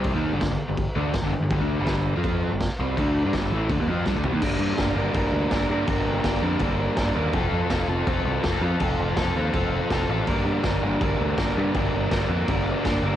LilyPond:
<<
  \new Staff \with { instrumentName = "Overdriven electric guitar" } { \clef bass \time 4/4 \key g \minor \tempo 4 = 164 <c g c'>16 <ees bes ees'>8 <g, d>16 <g, d>16 <g, d>16 r16 <g, d>8 r16 <d a d'>8 <g, d>16 <g, d>16 <g, d>16 <g, d>16 | <g, d>16 <d a d'>8 <g, d g>4 <f c' f'>4 <g, d>8 r16 <c g c'>8 | <d a d'>8. <g d'>16 <g, d g>8 <a, e a>8 <d a>16 <ees bes>16 <f c' f'>8 <g d'>16 <d a>16 <c g>16 <ees bes>16 | <g, d g bes d' bes'>4 <g, d g bes d' bes'>8 <g, d g bes d' bes'>8 <g, d g bes d' bes'>4 <g, d g bes d' bes'>8 <g, d g bes d' bes'>8 |
<g, d g bes d' bes'>4 <g, d g bes d' bes'>8 <g, d g bes d' bes'>8 <g, d g bes d' bes'>4 <g, d g bes d' bes'>8 <g, d g bes d' bes'>8 | <f c' f' a'>4 <f c' f' a'>8 <f c' f' a'>8 <f c' f' a'>4 <f c' f' a'>8 <f c' f' a'>8 | <f c' f' a'>4 <f c' f' a'>8 <f c' f' a'>8 <f c' f' a'>4 <f c' f' a'>8 <f c' f' a'>8 | <g, d g bes d' bes'>4 <g, d g bes d' bes'>8 <g, d g bes d' bes'>8 <g, d g bes d' bes'>4 <g, d g bes d' bes'>8 <g, d g bes d' bes'>8 |
<g, d g bes d' bes'>4 <g, d g bes d' bes'>8 <g, d g bes d' bes'>8 <g, d g bes d' bes'>4 <g, d g bes d' bes'>8 <g, d g bes d' bes'>8 | }
  \new Staff \with { instrumentName = "Picked electric bass" } { \clef bass \time 4/4 \key g \minor c,16 ees,8 g,,16 g,,16 g,,16 r16 g,,8 r16 d,8 g,,16 g,,16 g,,16 g,,16 | g,,16 d,8 g,,4 f,4 g,,8 r16 c,8 | d,8. g,16 g,,8 a,,8 d,16 ees,16 f,8 g,16 d,16 c,16 ees,16 | g,,8 g,8 g,,8 g,,8 g,,8 d,8 g,,8 g,8 |
g,,8 g,,8 g,,8 f,8 g,,4 g,,8 ees,8 | f,,8 f,8 f,,8 f,,8 f,,8 c,8 f,,8 f,8 | f,,8 f,,8 f,,8 ees,8 f,,4 f,,8 a,,8 | g,,8 g,8 g,,8 g,,8 g,,8 d,8 g,,8 g,8 |
g,,8 g,,8 g,,8 f,8 g,,4 g,,8 g,,8 | }
  \new DrumStaff \with { instrumentName = "Drums" } \drummode { \time 4/4 <cymc bd>4 <cymc bd sn>4 <cymc bd>4 <cymc bd sn>4 | <cymc bd>4 <cymc bd sn>4 <cymc bd>4 <cymc bd sn>4 | <cymc bd>4 <cymc bd sn>4 <cymc bd>4 <bd sn>8 tomfh8 | <cymc bd>4 <cymc bd sn>4 <cymc bd>4 <cymc bd sn>4 |
<cymc bd>4 <cymc bd sn>4 <cymc bd>4 <cymc bd sn>4 | <cymc bd>4 <cymc bd sn>4 <cymc bd>4 <cymc bd sn>4 | <cymc bd>4 <cymc bd sn>4 <cymc bd>4 <cymc bd sn>4 | <cymc bd>4 <cymc bd sn>4 <cymc bd>4 <cymc bd sn>4 |
<cymc bd>4 <cymc bd sn>4 <cymc bd>4 <cymc bd sn>4 | }
>>